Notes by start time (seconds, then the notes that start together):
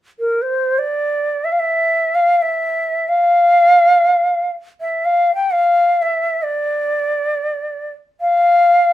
0.19 A#4
0.42 C5
0.79 D5
1.45 E5
1.52 F5
1.59 E5
2.15 F5
2.42 E5
3.08 F5
4.81 E5
5.05 F5
5.35 G5
5.51 F5
6.02 E5
6.43 D5
8.21 F5